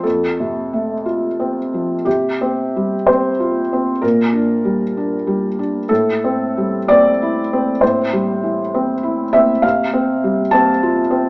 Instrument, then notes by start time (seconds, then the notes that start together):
felt piano
Already playing: F3
0.03 F2 A4
0.40 C3
0.73 A3
1.05 F4
1.40 C4
1.74 F3
2.05 C3 G4
2.41 C4
2.76 G3
3.06 C4 C5
3.40 F4
3.73 C4
4.02 A#2 A#4
4.33 D4
4.65 G3
4.97 D4
5.27 G3
5.59 D4
5.89 A2 A4
6.24 C4
6.58 G3
6.88 C4 D5
7.22 E4
7.53 C4
7.81 A2 C5
8.13 G3
8.43 E3
8.74 C4
9.03 E4
9.33 C4 E5
9.62 C3 F5
9.93 C4
10.24 G3
10.51 C4 A5
10.83 F4
11.11 C4